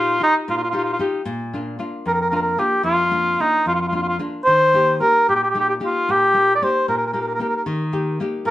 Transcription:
0.00 0.17 A#2 medium
0.00 0.19 D#4 soft
0.00 0.20 F4 soft
0.00 0.21 F4 medium
0.00 0.20 G4 soft
0.20 0.62 D#4 soft
0.20 0.34 D#4 medium
0.20 0.63 F4 soft
0.20 0.63 G4 soft
0.48 0.98 A#2 medium
0.48 0.55 F4 medium
0.57 0.62 F4 medium
0.63 0.69 F4 medium
0.70 0.98 D#4 soft
0.70 0.76 F4 soft
0.70 0.98 F4 soft
0.70 0.99 G4 soft
0.77 0.83 F4 medium
0.84 0.90 F4 soft
0.93 0.98 F4 medium
0.99 1.20 D#4 soft
0.99 1.20 F4 soft
0.99 1.21 G4 medium
1.25 1.77 A#2 medium
1.54 1.78 A#3 soft
1.54 1.78 D4 soft
1.54 1.78 F4 soft
1.79 2.21 A#3 soft
1.79 2.21 D4 soft
1.79 2.21 F4 medium
2.06 2.57 F2 medium
2.06 2.13 A#4 medium
2.13 2.20 A#4 medium
2.21 2.27 A#4 medium
2.29 2.57 A#3 soft
2.29 2.57 D4 soft
2.29 2.58 F4 soft
2.29 2.35 A#4 medium
2.35 2.41 A#4 medium
2.42 2.61 A#4 medium
2.58 3.01 A#3 medium
2.58 3.01 D4 soft
2.58 3.01 F4 medium
2.58 2.84 G4 medium
2.83 3.36 F2 medium
2.83 3.42 F4 medium
3.11 3.38 A#3 soft
3.11 3.38 D4 soft
3.11 3.39 F4 medium
3.39 3.82 A#3 soft
3.39 3.82 D4 soft
3.39 3.66 D#4 medium
3.39 3.83 F4 soft
3.66 4.18 F2 medium
3.66 3.73 F4 medium
3.75 3.80 F4 medium
3.81 3.88 F4 soft
3.88 4.18 A#3 soft
3.88 3.95 F4 medium
3.93 4.18 D4 soft
3.93 4.19 F4 soft
3.93 4.02 F4 medium
4.02 4.08 F4 medium
4.08 4.16 F4 medium
4.19 4.41 A#3 soft
4.19 4.41 D4 soft
4.19 4.41 F4 medium
4.45 4.99 D#3 medium
4.45 4.96 C5 loud
4.74 4.99 A#3 soft
4.74 4.99 D#4 soft
4.74 5.00 G4 medium
5.00 5.43 A#3 soft
5.00 5.43 D#4 soft
5.00 5.44 G4 soft
5.00 5.26 A#4 medium
5.29 5.80 A#2 medium
5.29 5.35 G4 medium
5.36 5.42 G4 medium
5.44 5.50 G4 medium
5.50 5.57 G4 medium
5.54 5.79 A#3 soft
5.54 5.80 D#4 soft
5.54 5.79 G4 soft
5.60 5.65 G4 medium
5.69 5.74 G4 medium
5.80 6.23 A#3 soft
5.80 6.23 D#4 soft
5.80 6.23 G4 soft
5.85 6.13 F4 medium
6.09 6.59 A#2 medium
6.09 6.55 G4 medium
6.34 6.60 A#3 soft
6.34 6.61 D#4 soft
6.34 6.61 G4 soft
6.55 6.65 D5 medium
6.62 7.04 A#3 soft
6.62 7.04 D#4 soft
6.62 7.04 G4 medium
6.62 6.88 C5 loud
6.88 7.39 A#2 medium
6.88 6.95 A#4 medium
6.98 7.03 A#4 soft
7.06 7.11 A#4 soft
7.13 7.38 A#3 soft
7.13 7.39 D#4 soft
7.13 7.39 G4 medium
7.13 7.18 A#4 soft
7.21 7.26 A#4 medium
7.27 7.33 A#4 soft
7.34 7.40 A#4 medium
7.39 7.82 A#3 soft
7.39 7.83 D#4 soft
7.39 7.83 G4 medium
7.39 7.47 A#4 soft
7.49 7.54 A#4 medium
7.56 7.62 A#4 soft
7.66 8.18 D#3 medium
7.92 8.19 A#3 soft
7.92 8.19 D#4 soft
7.92 8.20 G4 medium
8.20 8.51 A#3 medium
8.20 8.51 D#4 soft
8.20 8.51 G4 medium
8.45 8.51 A#2 medium
8.45 8.51 A#4 loud

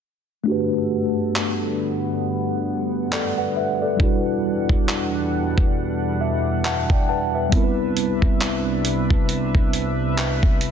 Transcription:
0.44 3.96 G2 medium
0.44 3.96 D3 medium
0.44 3.06 A3 medium
0.44 3.96 B3 medium
0.44 3.07 D4 medium
0.44 2.21 A4 medium
0.44 7.49 F#5 medium
0.48 3.08 F#4 medium
0.48 3.09 G4 medium
0.52 3.10 B4 medium
1.36 clap loud
2.23 7.49 G3 medium
3.12 3.37 A4 medium
3.12 3.36 D5 medium
3.12 clap loud
3.38 3.55 B4 medium
3.38 3.55 F#5 medium
3.56 3.81 B4 medium
3.56 3.80 E5 medium
3.82 4.24 A4 medium
3.82 4.23 D5 medium
3.96 7.49 E2 medium
3.96 7.49 B2 medium
3.96 7.47 G3 medium
3.96 7.48 D4 medium
3.96 7.49 D4 medium
3.96 kick loud
4.01 7.49 E4 medium
4.01 7.50 F#4 medium
4.01 6.63 B4 medium
4.69 kick medium
4.89 clap medium
5.58 kick medium
6.21 6.62 E5 medium
6.65 6.89 E5 medium
6.65 6.89 F#5 medium
6.65 6.89 A5 medium
6.65 clap loud
6.90 7.08 D5 medium
6.90 kick medium
7.09 7.33 B4 medium
7.09 7.33 F#5 medium
7.09 7.50 A5 medium
7.35 7.63 B4 soft
7.35 7.76 E5 medium
7.49 10.71 C2 medium
7.49 10.71 C3 medium
7.49 10.71 G3 medium
7.49 10.71 B3 medium
7.49 10.71 C4 medium
7.49 10.71 D4 medium
7.49 10.71 B4 medium
7.49 10.71 E5 medium
7.49 kick loud
7.49 closed hi-hat medium
7.55 10.71 E4 medium
7.55 7.63 A#4 medium
7.64 10.71 B4 medium
7.97 closed hi-hat medium
8.22 kick medium
8.40 clap medium
8.40 closed hi-hat medium
8.85 closed hi-hat medium
9.10 kick medium
9.29 closed hi-hat medium
9.55 kick medium
9.73 closed hi-hat medium
10.18 clap loud
10.18 closed hi-hat medium
10.43 kick medium
10.61 closed hi-hat medium

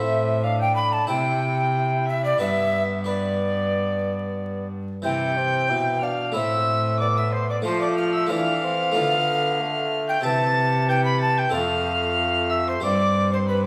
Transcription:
0.00 1.06 A2 medium
0.00 1.04 A3 medium
0.00 0.40 C4 medium
0.00 1.04 E4 medium
0.00 1.05 C5 medium
0.00 0.45 E5 medium
0.00 0.45 E5 loud
0.44 1.11 D4 medium
0.44 0.61 F5 medium
0.44 0.60 F5 loud
0.59 0.75 G5 medium
0.75 0.94 B5 medium
0.75 0.93 B5 medium
0.91 1.07 A5 medium
0.91 1.08 A5 medium
1.07 2.37 C3 medium
1.07 2.38 C3 medium
1.07 2.36 E4 medium
1.07 2.39 E4 medium
1.07 2.36 C5 medium
1.07 2.08 G5 loud
1.07 2.05 G5 loud
2.06 2.24 E5 medium
2.22 2.38 D5 medium
2.22 2.40 D5 medium
2.38 4.80 G2 medium
2.38 4.81 G2 medium
2.38 3.05 B3 medium
2.38 3.03 D4 medium
2.38 3.04 B4 soft
2.38 3.05 E5 medium
2.38 2.83 E5 loud
3.04 4.69 B3 medium
3.04 4.99 D4 medium
3.04 5.00 B4 medium
3.04 4.68 D5 medium
5.02 5.66 C3 medium
5.02 5.72 C3 medium
5.02 6.30 E3 medium
5.02 5.38 E4 medium
5.02 6.31 C5 medium
5.02 6.05 G5 loud
5.02 5.98 G6 loud
5.37 5.71 C4 medium
5.70 6.37 B2 medium
5.70 6.32 B2 medium
5.70 6.02 E4 medium
6.01 6.37 D4 medium
6.01 6.35 F5 medium
6.01 6.34 F6 medium
6.32 7.65 A2 medium
6.32 7.62 A2 medium
6.32 7.60 A3 medium
6.32 7.03 C4 medium
6.32 7.61 E4 medium
6.32 7.61 C5 medium
6.32 6.99 E5 medium
6.32 6.99 E6 loud
7.00 7.65 B3 medium
7.00 7.06 D5 medium
7.00 7.19 D6 loud
7.17 7.34 E5 medium
7.17 7.32 E6 loud
7.32 7.48 C5 medium
7.32 7.49 C6 medium
7.49 7.64 D5 medium
7.49 7.57 D6 medium
7.62 8.32 F3 medium
7.62 8.27 F3 medium
7.62 8.25 A3 medium
7.62 8.32 A3 medium
7.62 8.27 F4 medium
7.62 7.80 C5 medium
7.62 8.28 C5 medium
7.62 7.81 C6 loud
7.81 7.87 D5 medium
7.81 7.97 D6 loud
7.98 8.04 F5 medium
7.98 8.14 F6 loud
8.15 8.32 E5 medium
8.15 8.30 E6 loud
8.27 8.97 E3 medium
8.27 8.91 E3 medium
8.27 8.91 A3 medium
8.27 8.65 D4 medium
8.27 8.93 C5 medium
8.27 8.92 F5 medium
8.27 10.05 F6 loud
8.31 9.86 F5 loud
8.64 8.98 C4 medium
8.92 10.21 D3 medium
8.92 10.19 A3 medium
8.92 10.19 F4 medium
8.92 10.20 D5 medium
8.96 10.24 D3 medium
8.96 9.62 B3 medium
9.60 10.24 A3 medium
10.09 10.24 G5 loud
10.09 10.24 G6 loud
10.21 11.50 C3 medium
10.21 11.48 C4 medium
10.21 11.49 G4 medium
10.21 11.49 E5 medium
10.21 10.88 A5 loud
10.21 10.90 A6 loud
10.25 10.85 E3 medium
10.88 11.55 E3 medium
10.88 11.04 G5 medium
10.88 11.05 G6 loud
11.05 11.21 B5 loud
11.05 11.20 B6 loud
11.21 11.40 A5 loud
11.21 11.39 A6 loud
11.38 11.56 G5 medium
11.38 11.53 G6 loud
11.49 12.79 F2 medium
11.49 12.84 A3 medium
11.49 12.77 C4 medium
11.49 12.78 A4 medium
11.49 12.78 C5 medium
11.53 12.81 F2 medium
11.53 12.53 F5 loud
11.53 12.51 F6 loud
12.50 12.67 E5 loud
12.50 12.69 E6 loud
12.68 12.83 C5 loud
12.68 12.85 C6 loud
12.80 13.66 G2 medium
12.80 13.66 C4 medium
12.80 13.66 G4 medium
12.80 13.66 C5 medium
12.80 13.32 D5 loud
12.80 13.32 D6 loud
13.33 13.39 C5 medium
13.33 13.48 C6 loud
13.49 13.65 B4 medium
13.49 13.65 B5 loud

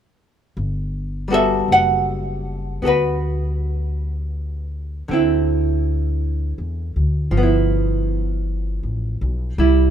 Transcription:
0.57 1.65 G1 medium
1.28 5.07 G3 soft
1.28 2.81 B3 soft
1.28 2.82 F#4 soft
1.32 2.84 A4 soft
1.32 1.71 E5 medium
1.68 2.77 F#1 medium
1.72 2.85 F#5 medium
2.82 5.04 D2 medium
2.82 5.08 B3 soft
2.82 2.86 F#4 soft
2.82 2.87 A4 soft
2.86 5.06 F#4 soft
2.86 4.67 B4 medium
5.08 6.55 D2 medium
5.08 7.33 D3 soft
5.08 7.35 C4 soft
5.13 7.36 E4 soft
6.58 6.93 E2 medium
6.96 7.31 D2 medium
7.31 8.78 G1 medium
7.31 9.57 F3 soft
7.37 9.60 B3 soft
7.43 9.58 E4 soft
8.83 9.18 A1 soft
9.21 9.56 B1 medium
9.58 9.90 C2 medium
9.58 9.90 G3 soft
9.58 9.90 E4 medium

